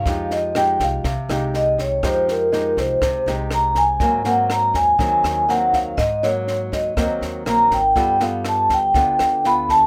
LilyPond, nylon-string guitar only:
\new Staff \with { instrumentName = "Nylon-string guitar" } { \time 4/4 \key f \minor \tempo 4 = 122 << { <aes ees' g'>4 <aes ees' g'>4 r8 <aes ees' g'>4. | <aes ees' g'>4 <aes ees' g'>4. <aes ees' g'>4. | <ges bes c'>8 <ges bes c'>4. <ges bes c'>4 <ges bes c'>4 | r8 <ges bes>4. <ges bes c'>4 <ges bes c'>8 r8 |
<b f' a'>8 <b f' a'>4. <b f' a'>4 <b f' a'>4 | } \\ { f2 c2 | f2 c2 | aes,2 ees2 | aes,2 ees2 |
g2 d2 | } >> }